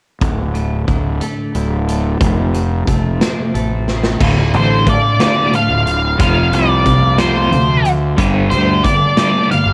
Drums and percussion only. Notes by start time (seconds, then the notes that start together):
0.22 kick, closed hi-hat
0.55 closed hi-hat
0.88 kick, closed hi-hat
1.21 closed hi-hat
1.55 closed hi-hat
1.88 closed hi-hat
2.21 kick, closed hi-hat
2.54 closed hi-hat
2.87 kick, closed hi-hat
3.21 snare, closed hi-hat
3.55 closed hi-hat
3.88 snare
4.03 snare
4.20 kick, crash
4.53 closed hi-hat
4.86 kick, closed hi-hat
5.20 snare, closed hi-hat
5.53 closed hi-hat
5.87 closed hi-hat
6.20 kick, closed hi-hat
6.53 closed hi-hat
6.85 kick, closed hi-hat
7.18 snare, closed hi-hat
7.52 closed hi-hat
7.85 closed hi-hat
8.18 kick, closed hi-hat
8.51 closed hi-hat
8.85 kick, closed hi-hat
9.17 snare, closed hi-hat
9.51 closed hi-hat